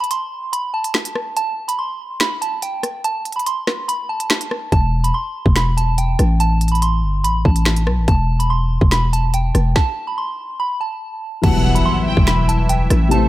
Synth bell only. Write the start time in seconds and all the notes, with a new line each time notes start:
0.00 B5
0.11 C6
0.53 B5
0.74 A5
1.37 A5
1.68 B5
1.79 C6
2.21 B5
2.42 A5
2.63 G5
3.04 A5
3.36 B5
3.46 C6
3.88 B5
4.09 A5
4.72 A5
5.04 B5
5.14 C6
5.56 B5
5.77 A5
5.98 G5
6.40 A5
6.72 B5
6.82 C6
7.24 B5
7.45 A5
8.08 A5
8.39 B5
8.50 C6
8.92 B5
9.13 A5
9.34 G5
9.76 A5
10.07 B5
10.18 C6
10.60 B5
10.81 A5
11.44 A5
11.75 B5
11.86 C6
12.28 B5
12.48 A5
12.69 G5
13.11 A5